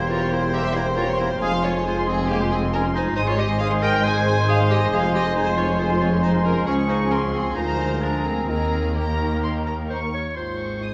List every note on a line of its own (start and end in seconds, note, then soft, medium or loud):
0.00 1.39 E1 medium
0.00 1.38 E2 medium
0.00 0.10 G3 medium
0.00 1.38 A#3 medium
0.00 1.42 A#3 medium
0.00 1.38 G4 medium
0.00 2.85 C5 medium
0.00 1.44 G5 medium
0.00 0.10 C6 medium
0.00 2.91 C6 medium
0.09 0.20 E3 medium
0.09 0.31 F4 medium
0.09 0.20 A#4 medium
0.09 0.32 C#5 loud
0.09 0.20 A#5 medium
0.20 0.32 G3 medium
0.20 0.32 C5 medium
0.20 0.32 C6 medium
0.30 0.42 E3 medium
0.30 0.53 E4 medium
0.30 0.42 A#4 medium
0.30 0.53 C5 loud
0.30 0.43 A#5 medium
0.41 0.53 G3 medium
0.41 0.53 C5 medium
0.41 0.54 C6 medium
0.52 0.63 E3 medium
0.52 0.75 G4 medium
0.52 0.63 A#4 medium
0.52 0.75 E5 loud
0.52 0.63 A#5 medium
0.64 0.75 G3 medium
0.64 0.75 C5 medium
0.64 0.75 C6 medium
0.74 0.86 E3 medium
0.74 0.86 E4 medium
0.74 0.86 A#4 medium
0.74 0.97 C5 medium
0.74 0.86 A#5 medium
0.86 0.97 G3 medium
0.86 0.97 C5 medium
0.86 0.97 C6 medium
0.95 1.07 E3 medium
0.95 1.07 F4 medium
0.95 1.07 A#4 medium
0.95 1.19 C#5 loud
0.95 1.07 A#5 medium
1.06 1.18 G3 medium
1.06 1.19 C5 medium
1.06 1.20 C6 medium
1.17 1.29 E3 medium
1.17 1.30 E4 medium
1.17 1.30 A#4 medium
1.17 1.42 C5 medium
1.17 1.30 A#5 medium
1.29 1.41 G3 medium
1.29 1.41 C5 medium
1.29 1.42 C6 medium
1.40 3.13 F1 medium
1.40 3.13 F2 medium
1.40 1.51 G#3 medium
1.40 3.00 G#3 medium
1.40 4.92 G#3 medium
1.40 2.99 F4 medium
1.40 1.51 G#4 medium
1.40 1.52 G#4 loud
1.40 1.63 F5 loud
1.40 1.52 G#5 medium
1.40 3.01 G#5 medium
1.51 1.63 F3 medium
1.51 1.63 F4 medium
1.51 1.64 C6 medium
1.62 1.74 G#3 medium
1.62 1.75 F4 medium
1.62 1.74 G#4 medium
1.62 1.85 C#5 loud
1.62 1.74 G#5 medium
1.73 1.85 F3 medium
1.73 1.85 F4 medium
1.73 1.86 C6 medium
1.85 1.95 G#3 medium
1.85 2.10 F4 medium
1.85 1.95 G#4 medium
1.85 2.07 C5 medium
1.85 1.96 G#5 medium
1.96 2.07 F3 medium
1.96 2.07 F4 medium
1.96 2.08 C6 medium
2.06 2.18 G#3 medium
2.06 2.30 C4 medium
2.06 2.28 G#4 loud
2.06 2.18 G#4 medium
2.06 2.19 G#5 medium
2.18 2.29 F3 medium
2.18 2.29 F4 medium
2.18 2.31 C6 medium
2.28 2.40 G#3 medium
2.28 2.40 A#3 medium
2.28 2.51 G4 loud
2.28 2.40 G#4 medium
2.28 2.40 G#5 medium
2.41 2.52 F3 medium
2.41 2.52 F4 medium
2.41 2.52 C6 medium
2.51 2.62 G#3 medium
2.51 2.73 C4 medium
2.51 2.59 G#4 loud
2.51 2.62 G#4 medium
2.51 2.63 G#5 medium
2.62 2.73 F3 medium
2.62 2.73 F4 medium
2.62 2.74 C6 medium
2.73 2.83 G#3 medium
2.73 2.97 C#4 medium
2.73 2.84 G#4 medium
2.73 2.81 A#4 loud
2.73 2.84 G#5 medium
2.84 2.95 F3 medium
2.84 2.95 F4 medium
2.84 2.96 C6 medium
2.95 3.06 G#3 medium
2.95 3.15 D#4 medium
2.95 3.06 G#4 medium
2.95 3.04 C5 loud
2.95 3.06 G#5 medium
3.05 3.16 F3 medium
3.05 3.16 F4 medium
3.05 3.17 C6 medium
3.16 4.89 G#1 medium
3.16 4.89 G#2 medium
3.16 3.27 G#3 medium
3.16 6.64 G#3 medium
3.16 3.21 D#4 loud
3.16 4.89 D#4 medium
3.16 3.27 G#4 medium
3.16 3.21 C5 loud
3.16 6.69 C5 medium
3.16 6.64 G#5 medium
3.16 6.63 C6 medium
3.16 3.27 D#6 medium
3.27 3.38 D#3 medium
3.27 3.37 F4 medium
3.27 3.38 C5 medium
3.27 3.38 C#5 loud
3.27 3.38 C6 medium
3.38 3.49 G#3 medium
3.38 3.48 G4 medium
3.38 3.49 G#4 medium
3.38 3.60 D#5 loud
3.38 3.49 D#6 medium
3.49 3.60 D#3 medium
3.49 3.60 C5 medium
3.49 3.60 C6 medium
3.59 3.71 G#3 medium
3.59 3.84 G#4 medium
3.59 3.71 G#4 medium
3.59 3.67 F5 loud
3.59 3.71 D#6 medium
3.71 3.82 D#3 medium
3.71 3.82 C5 medium
3.71 3.83 C6 medium
3.82 3.94 G#3 medium
3.82 3.94 G#4 medium
3.82 4.05 A#4 loud
3.82 4.04 G5 loud
3.82 3.93 D#6 medium
3.92 4.04 D#3 medium
3.92 4.04 C5 medium
3.92 4.04 C6 medium
4.03 4.15 G#3 medium
4.03 4.15 G#4 medium
4.03 4.48 C5 medium
4.03 4.49 G#5 loud
4.03 4.14 D#6 medium
4.16 4.27 D#3 medium
4.16 4.27 C5 medium
4.16 4.27 C6 medium
4.27 4.38 G#3 medium
4.27 4.38 G#4 medium
4.27 4.38 D#6 medium
4.37 4.49 D#3 medium
4.37 4.48 C5 medium
4.37 4.49 C6 medium
4.48 4.59 G#3 medium
4.48 4.58 G#4 loud
4.48 4.59 G#4 medium
4.48 4.71 F5 loud
4.48 4.59 D#6 medium
4.59 4.71 D#3 medium
4.59 4.71 C5 medium
4.59 4.71 C6 medium
4.70 4.82 G#3 medium
4.70 4.80 G4 medium
4.70 4.82 G#4 medium
4.70 4.93 D#5 loud
4.70 4.82 D#6 medium
4.82 4.93 D#3 medium
4.82 4.93 C5 medium
4.82 4.93 C6 medium
4.92 6.64 F1 medium
4.92 6.64 F2 medium
4.92 5.03 G#3 medium
4.92 8.45 F4 medium
4.92 5.02 G#4 loud
4.92 5.03 G#4 medium
4.92 5.15 F5 loud
4.92 5.03 G#5 medium
5.04 5.15 F3 medium
5.04 5.15 F4 medium
5.04 5.15 C6 medium
5.14 5.25 G#3 medium
5.14 5.24 G4 medium
5.14 5.25 G#4 medium
5.14 5.36 D#5 medium
5.14 5.26 G#5 medium
5.25 5.36 F3 medium
5.25 5.36 F4 medium
5.25 5.36 C6 medium
5.36 5.47 G#3 medium
5.36 5.46 D#4 medium
5.36 5.46 G#4 medium
5.36 5.58 C5 loud
5.36 5.47 G#5 medium
5.46 5.58 F3 medium
5.46 5.58 F4 medium
5.46 5.58 C6 medium
5.57 5.69 G#3 medium
5.57 5.67 F4 medium
5.57 5.69 G#4 medium
5.57 5.79 C#5 loud
5.57 5.69 G#5 medium
5.68 5.79 F3 medium
5.68 5.79 F4 medium
5.68 5.80 C6 medium
5.79 5.90 G#3 medium
5.79 6.00 F4 medium
5.79 5.90 G#4 medium
5.79 6.01 C5 medium
5.79 5.90 G#5 medium
5.90 6.01 F3 medium
5.90 6.01 F4 medium
5.90 6.01 C6 medium
6.00 6.12 G#3 medium
6.00 6.11 F4 medium
6.00 6.12 G#4 medium
6.00 6.23 C#5 medium
6.00 6.12 G#5 medium
6.12 6.23 F3 medium
6.12 6.23 F4 medium
6.12 6.23 C6 medium
6.22 6.33 G#3 medium
6.22 6.44 D#4 medium
6.22 6.33 G#4 medium
6.22 6.30 C5 loud
6.22 6.33 G#5 medium
6.33 6.45 F3 medium
6.33 6.45 F4 medium
6.33 6.45 C6 medium
6.44 6.56 G#3 medium
6.44 6.67 C#4 medium
6.44 6.56 G#4 medium
6.44 6.66 A#4 loud
6.44 6.56 G#5 medium
6.56 6.67 F3 medium
6.56 6.67 F4 medium
6.56 6.67 C6 medium
6.65 7.52 C#2 medium
6.65 7.52 F3 medium
6.65 6.91 C#4 medium
6.65 6.73 G#4 loud
6.65 7.52 G#4 medium
6.65 7.56 G#4 medium
6.65 7.52 G#5 medium
6.65 7.51 C#6 medium
6.65 7.08 C#6 medium
6.89 7.10 D#4 medium
6.89 6.97 C5 medium
7.11 7.34 C#4 medium
7.11 7.19 A#4 medium
7.11 7.55 C6 medium
7.33 7.57 C4 medium
7.33 7.55 G#4 medium
7.55 8.47 D2 medium
7.55 8.01 F3 medium
7.55 8.03 D#4 medium
7.55 8.01 G#4 medium
7.55 10.11 A#4 medium
7.55 8.02 C5 loud
7.55 8.01 G#5 medium
7.55 8.00 A#5 medium
7.55 8.01 A#5 medium
8.01 8.49 F3 medium
8.01 8.50 F3 medium
8.01 8.27 D4 medium
8.01 8.49 G#4 medium
8.01 8.25 A#4 medium
8.01 8.52 G#5 medium
8.01 8.48 A#5 medium
8.25 8.49 C4 medium
8.25 8.48 G#4 medium
8.49 10.13 D#2 medium
8.49 10.14 D#2 medium
8.49 8.95 D#3 medium
8.49 8.96 D#3 medium
8.49 10.11 A#3 medium
8.49 8.97 C4 medium
8.49 10.14 D#4 medium
8.49 8.96 G#4 medium
8.49 8.96 A#4 medium
8.49 8.95 A#4 medium
8.49 8.95 A#5 medium
8.96 10.11 D#3 medium
8.96 10.14 D#3 medium
8.96 9.89 A#3 medium
8.96 9.91 G4 medium
8.96 10.12 A#4 medium
8.96 10.14 A#4 medium
8.96 10.12 A#5 medium
8.96 9.40 A#5 medium
9.43 9.51 C6 medium
9.66 9.74 A#5 medium
9.90 10.00 C5 medium
9.90 10.36 C#6 medium
10.14 10.36 C#5 medium
10.36 10.94 G#1 medium
10.36 10.94 G#2 soft
10.36 10.79 D#3 soft
10.36 10.79 F4 medium
10.36 10.94 G#4 soft
10.36 10.94 C5 medium
10.36 10.58 C6 soft
10.60 10.83 C#6 soft
10.82 10.94 G#3 soft
10.82 10.94 D#4 soft
10.82 10.94 D#6 soft